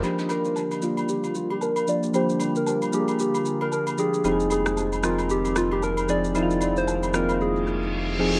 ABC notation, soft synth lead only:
X:1
M:4/4
L:1/16
Q:"Swing 16ths" 1/4=114
K:Gphr
V:1 name="Soft synth lead"
B2 B4 F2 G2 F G B2 d2 | c3 B B2 G2 G3 B B2 A2- | A2 A4 F2 G2 F G B2 d2- | d3 c3 B2 A4 z4 |]